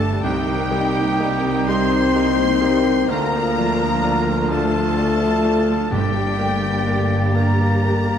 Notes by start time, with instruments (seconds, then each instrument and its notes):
Already playing: double bass section G1, cello section G2, harp G2 D3 A3 C4 D4 G4, french horn section A3, grand piano A3 A#3 D4 G4, clarinet D4, viola section D4, cor anglais A4, violin section A5
0.01 viola section G3
0.22 cello section C2, double bass section C2, grand piano C2, harp C3, viola section C3 D#4, french horn section G3, clarinet D#4, cor anglais G4, violin section G5, flute G6
0.47 viola section D#3
0.70 harp G3, viola section G3, grand piano A#3 D#4 G4
0.96 viola section A#3
1.19 viola section G3, grand piano A#3 D#4 G4, harp D#4
1.43 viola section D#3
1.67 viola section C3, grand piano A#3 D#4 G4, french horn section C4, harp G4, cor anglais C5, violin section C6
1.91 viola section D#3
2.14 viola section G3, grand piano A#3 D#4 G4
2.38 viola section A#3
2.61 viola section G3, grand piano A#3 D#4 G4, harp A#3
2.85 viola section D#3
3.08 double bass section D2, grand piano D2, cello section D2, viola section D3 F4, harp D3, french horn section A#3, clarinet D4, cor anglais A#4, violin section A#5, flute F6
3.31 viola section F3
3.55 harp F3, grand piano F3 D4 F4, viola section A3
3.79 viola section F3
4.02 viola section D3, grand piano F3 D4 F4, harp F4
4.27 viola section F3
4.49 viola section A3, grand piano A3 D4 F4, french horn section A3, cor anglais A4, violin section A5
4.73 viola section F3
4.97 viola section D3, grand piano A3 D4 F4, harp F4
5.21 viola section F3
5.44 viola section A3, grand piano A3 D4 F4, harp D4
5.67 viola section F3
5.90 double bass section G1, cello section G2, grand piano G2, harp G2, timpani G2, viola section D3 G4, french horn section G3, clarinet A#3, cor anglais G4, violin section G5, flute A6
6.14 viola section G3
6.38 harp D3, viola section A3, grand piano A#3 D4 G4
6.63 viola section A#3
6.86 viola section A3, grand piano A#3 D4 G4, harp D4
7.11 viola section G3
7.33 viola section D3, french horn section A#3, grand piano A#3 D4 G4, harp G4, cor anglais A#4, violin section A#5
7.60 viola section G3
7.83 viola section A3, grand piano A#3 D4 G4
8.09 viola section A#3